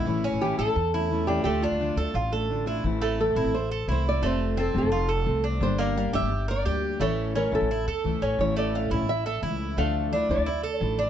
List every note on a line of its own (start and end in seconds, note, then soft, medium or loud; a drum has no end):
0.00 0.23 E4 medium
0.05 0.30 A1 medium
0.05 0.40 E3 medium
0.05 0.40 A3 medium
0.05 0.40 C#4 medium
0.05 0.41 E4 medium
0.24 0.57 C#4 medium
0.32 0.57 A1 medium
0.41 0.57 E3 medium
0.41 0.58 A3 medium
0.41 0.58 C#4 medium
0.41 0.58 E4 medium
0.41 0.58 G4 loud
0.58 0.66 A1 medium
0.58 0.75 A3 soft
0.58 0.76 C#4 soft
0.58 0.75 E4 soft
0.58 1.24 A4 loud
0.58 0.92 A4 medium
0.76 1.42 E2 loud
0.76 muted steel-string acoustic guitar stroke medium
0.94 1.11 A3 soft
0.94 1.10 C#4 soft
0.94 1.27 E4 medium
0.94 1.10 E4 soft
1.11 1.27 E3 soft
1.11 1.28 A3 medium
1.11 1.28 C#4 medium
1.11 1.27 E4 medium
1.27 1.44 A3 medium
1.27 1.45 C#4 medium
1.27 1.45 D4 medium
1.27 1.45 E4 medium
1.27 1.43 G4 medium
1.44 1.69 D2 medium
1.44 1.78 D3 medium
1.44 1.62 A3 medium
1.44 1.79 A3 medium
1.44 1.79 D4 medium
1.44 1.80 F4 medium
1.44 1.62 G4 loud
1.62 1.97 D4 medium
1.62 2.62 F4 medium
1.71 1.95 D2 medium
1.79 1.96 D3 medium
1.79 1.96 A3 medium
1.79 1.96 D4 medium
1.79 1.96 F4 medium
1.96 2.05 D2 medium
1.96 2.13 A3 soft
1.96 2.13 D4 soft
1.96 2.13 F4 soft
1.96 2.14 A4 medium
2.13 2.80 A1 loud
2.13 2.31 F4 medium
2.13 muted steel-string acoustic guitar stroke medium
2.31 2.48 A3 soft
2.31 2.48 D4 soft
2.31 2.48 F4 soft
2.31 2.66 A4 medium
2.49 2.66 D3 soft
2.49 2.66 A3 soft
2.49 2.65 D4 soft
2.49 2.65 F4 soft
2.66 2.83 A3 soft
2.66 2.83 D4 medium
2.66 2.84 E4 medium
2.66 2.83 F4 medium
2.83 3.33 A1 medium
2.83 3.18 E3 medium
2.83 3.18 A3 medium
2.83 3.18 C4 medium
2.83 3.19 E4 medium
3.02 3.35 A3 medium
3.19 3.36 E3 soft
3.19 3.36 A3 medium
3.19 3.36 C4 medium
3.19 3.35 E4 medium
3.19 3.55 A4 medium
3.35 3.43 A1 medium
3.35 3.53 A3 soft
3.35 3.53 C4 soft
3.35 3.53 E4 medium
3.35 3.70 E4 medium
3.44 3.85 A1 medium
3.54 3.90 C5 medium
3.54 muted steel-string acoustic guitar stroke medium
3.71 3.88 A4 medium
3.88 4.21 C2 medium
3.88 4.22 E3 medium
3.88 4.21 A3 soft
3.88 4.22 C4 medium
3.88 4.22 E4 medium
3.88 4.23 E4 medium
3.92 4.06 C5 medium
4.09 4.23 D5 loud
4.22 4.72 F1 medium
4.22 4.56 C3 medium
4.22 4.55 F3 medium
4.22 4.56 A3 medium
4.22 4.56 C4 medium
4.22 4.57 F4 medium
4.26 4.57 C5 loud
4.56 4.73 F3 medium
4.56 4.74 A3 soft
4.56 4.91 C4 medium
4.56 4.73 C4 medium
4.56 4.72 F4 medium
4.56 4.75 A4 medium
4.73 4.82 F1 medium
4.73 4.90 F3 medium
4.73 4.90 A3 medium
4.73 4.91 C4 medium
4.73 4.91 F4 medium
4.78 5.25 A4 medium
4.82 5.24 F1 medium
4.91 5.09 F4 medium
4.91 muted steel-string acoustic guitar stroke medium
5.09 5.43 A4 medium
5.25 5.59 C2 medium
5.25 5.60 F3 soft
5.25 5.60 A3 medium
5.25 5.61 C4 medium
5.25 5.61 F4 medium
5.44 5.78 D4 medium
5.60 6.10 G1 medium
5.60 5.95 D3 medium
5.60 5.94 G3 medium
5.60 5.95 A#3 medium
5.60 5.96 D4 medium
5.60 5.96 G4 medium
5.60 5.80 C5 medium
5.78 6.12 A#3 medium
5.78 5.97 D5 medium
5.95 6.12 G3 medium
5.95 6.13 A#3 medium
5.95 6.12 D4 medium
5.95 6.11 G4 medium
5.95 6.15 F5 loud
6.13 6.21 G1 loud
6.13 6.30 G3 soft
6.13 6.31 A#3 medium
6.13 6.30 D4 medium
6.13 6.30 G4 medium
6.13 6.47 G4 medium
6.13 6.47 E5 loud
6.21 6.63 G1 medium
6.31 muted steel-string acoustic guitar stroke medium
6.48 6.65 A#4 medium
6.48 6.98 D5 loud
6.65 6.98 D2 medium
6.65 6.99 G3 medium
6.65 6.99 A#3 medium
6.65 7.00 D4 medium
6.65 6.99 G4 medium
6.65 7.00 G4 medium
7.00 7.49 A1 medium
7.00 7.34 E3 medium
7.00 7.34 A3 medium
7.00 7.35 C#4 medium
7.00 7.35 E4 medium
7.00 7.37 C#5 loud
7.35 7.52 E3 soft
7.35 7.52 A3 medium
7.35 7.69 C#4 medium
7.35 7.52 C#4 medium
7.35 7.51 E4 medium
7.35 7.54 A#4 medium
7.52 7.60 A1 medium
7.52 7.69 A3 soft
7.52 7.69 C#4 medium
7.52 7.69 E4 medium
7.52 8.19 A4 medium
7.61 7.85 A1 medium
7.71 7.87 E4 medium
7.71 muted steel-string acoustic guitar stroke medium
7.86 8.02 E2 medium
7.86 8.21 A4 medium
8.04 8.20 C#2 medium
8.04 8.38 E3 medium
8.04 8.39 A3 medium
8.04 8.39 C#4 soft
8.04 8.39 E4 medium
8.22 8.37 A1 medium
8.22 8.55 C#4 medium
8.39 8.88 A1 medium
8.39 8.73 E3 medium
8.39 8.74 A3 medium
8.39 8.74 C#4 medium
8.39 8.74 E4 medium
8.39 8.58 C#5 loud
8.56 8.90 A3 medium
8.56 8.75 D5 medium
8.75 8.91 E3 medium
8.75 8.91 A3 medium
8.75 8.91 C#4 medium
8.75 8.90 E4 medium
8.75 9.09 F5 loud
8.90 8.99 A1 medium
8.90 9.08 A3 medium
8.90 9.08 C#4 medium
8.90 9.25 E4 medium
8.90 9.08 E4 medium
8.99 9.40 A1 medium
9.08 9.25 E5 medium
9.08 muted steel-string acoustic guitar stroke medium
9.26 9.42 A4 medium
9.26 9.75 E5 medium
9.42 9.75 C#2 medium
9.42 9.77 E3 medium
9.42 9.77 A3 medium
9.42 9.77 C#4 medium
9.42 9.76 E4 medium
9.42 9.77 E4 medium
9.77 10.27 D2 medium
9.77 10.12 D3 medium
9.77 10.11 F3 medium
9.77 10.11 A3 medium
9.77 10.12 A3 medium
9.77 10.12 D4 medium
9.77 10.30 F5 loud
10.13 10.29 F3 medium
10.13 10.29 A3 medium
10.13 10.46 D4 medium
10.13 10.29 D4 medium
10.13 10.28 E4 medium
10.29 10.37 D2 medium
10.29 10.47 F3 soft
10.29 10.47 A3 soft
10.29 10.46 D4 medium
10.29 10.46 E4 medium
10.29 10.79 D5 medium
10.37 10.79 D2 medium
10.46 10.63 E4 medium
10.46 muted steel-string acoustic guitar stroke medium
10.63 10.97 A4 medium
10.79 11.10 A1 medium
10.79 11.10 F3 soft
10.79 11.10 A3 medium
10.79 11.10 D4 medium
10.79 10.95 C5 medium
10.83 11.10 E4 medium
10.99 11.10 D4 medium